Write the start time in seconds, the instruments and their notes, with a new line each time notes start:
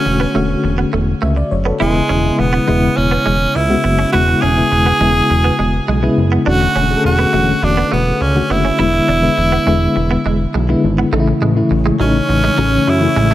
Already playing: fm electric piano D3 A3 C#4 F#4 C#5, tenor saxophone C#4
0.05 analog synth bass E1, muted clean electric guitar stroke
0.20 clean electric guitar B3
0.34 analog synth bass E1, fm electric piano D3 A3 C#4 F#4, clean electric guitar A3
0.64 analog synth bass E1, muted clean electric guitar stroke
0.78 clean electric guitar B3
0.93 analog synth bass E1, clean electric guitar A3
1.22 analog synth bass C#2, clean electric guitar A3, fm electric piano E5
1.36 fm electric piano D5, muted clean electric guitar stroke
1.51 analog synth bass F#1, fm electric piano C#5
1.65 clean electric guitar B3, fm electric piano A4
1.80 analog synth bass E1, fm electric piano C#3 G#3 B3 E4, tenor saxophone G#3, clean electric guitar E4
1.95 muted clean electric guitar stroke
2.09 analog synth bass E1, clean electric guitar C#4
2.23 fm electric piano C#3 G#3 B3 E4
2.39 analog synth bass E1, tenor saxophone B3, muted clean electric guitar stroke
2.53 clean electric guitar B3
2.67 analog synth bass E1, fm electric piano C#3 G#3 B3 E4, clean electric guitar G#3
2.97 analog synth bass E1, tenor saxophone C#4, muted clean electric guitar stroke
3.11 clean electric guitar B3
3.26 analog synth bass E1, clean electric guitar G#3
3.55 analog synth bass C#2, tenor saxophone E4, muted clean electric guitar stroke
3.69 fm electric piano C#3 G#3 B3 F#4
3.84 analog synth bass F#1, clean electric guitar B3
3.99 clean electric guitar C#4
4.12 analog synth bass E1, fm electric piano C#3 G#3 B3 E4, clean electric guitar E4, tenor saxophone F#4
4.28 muted clean electric guitar stroke
4.41 analog synth bass E1, clean electric guitar C#4, tenor saxophone G#4
4.57 fm electric piano C#3 G#3 B3 E4
4.71 analog synth bass E1, muted clean electric guitar stroke
4.86 clean electric guitar B3
5.00 analog synth bass E1, fm electric piano C#3 G#3 B3 E4, clean electric guitar G#3
5.30 analog synth bass E1, muted clean electric guitar stroke
5.44 clean electric guitar B3
5.59 analog synth bass E1, clean electric guitar G#3
5.88 analog synth bass B1, clean electric guitar G#3
6.02 fm electric piano C#3 G#3 B3 E4, muted clean electric guitar stroke
6.17 analog synth bass F#1
6.32 clean electric guitar B3
6.46 analog synth bass E1, fm electric piano D3 A3 C#4 F#4, clean electric guitar D4, tenor saxophone F#4
6.61 muted clean electric guitar stroke
6.76 analog synth bass E1, clean electric guitar C#4
6.90 fm electric piano D3 A3 C#4 G#4
6.97 fm electric piano A4
7.04 analog synth bass E1, tenor saxophone F#4, muted clean electric guitar stroke
7.19 clean electric guitar B3
7.33 analog synth bass E1, fm electric piano D3 A3 C#4 F#4, clean electric guitar A3
7.62 analog synth bass E1, tenor saxophone D4, muted clean electric guitar stroke
7.77 clean electric guitar B3
7.92 analog synth bass E1, clean electric guitar A3, tenor saxophone B3
8.21 analog synth bass C#2, tenor saxophone C#4, muted clean electric guitar stroke
8.35 fm electric piano D3 A3 C#4 F#4
8.50 analog synth bass F#1, clean electric guitar B3, tenor saxophone E4
8.65 clean electric guitar C#4
8.79 analog synth bass E1, fm electric piano D3 G#3 B3 E4, clean electric guitar E4
8.94 muted clean electric guitar stroke
9.08 analog synth bass E1, clean electric guitar D4
9.22 fm electric piano D3 G#3 B3 E4
9.37 analog synth bass E1, muted clean electric guitar stroke
9.52 clean electric guitar B3
9.66 analog synth bass E1, fm electric piano D3 G#3 B3 E4, clean electric guitar G#3
9.96 analog synth bass E1, muted clean electric guitar stroke
10.11 clean electric guitar B3
10.26 analog synth bass E1, clean electric guitar G#3
10.54 analog synth bass B1, clean electric guitar G#3
10.68 fm electric piano D3 G#3 B3 E4, muted clean electric guitar stroke
10.84 analog synth bass G#1
10.98 clean electric guitar B3
11.12 analog synth bass A1, fm electric piano C#3 E3 A3 D#4, clean electric guitar A3, ambient pad C#4 A4 C#5 C#6
11.20 fm electric piano E4
11.28 muted clean electric guitar stroke
11.41 analog synth bass A1, clean electric guitar G#3
11.55 fm electric piano C#3 E3 A3 E4
11.71 analog synth bass A1, muted clean electric guitar stroke
11.86 clean electric guitar G#3
11.99 analog synth bass A1, fm electric piano C#3 E3 A3 D#4, clean electric guitar F#3, tenor saxophone C#4
12.29 analog synth bass A1, muted clean electric guitar stroke
12.44 clean electric guitar G#3
12.57 analog synth bass A1, fm electric piano C#3 E3 A3 C#4, clean electric guitar F#3
12.87 analog synth bass F#2, tenor saxophone E4, muted clean electric guitar stroke
13.01 fm electric piano C#3 E3 A3 E4
13.16 analog synth bass A1, clean electric guitar G#3
13.31 clean electric guitar A3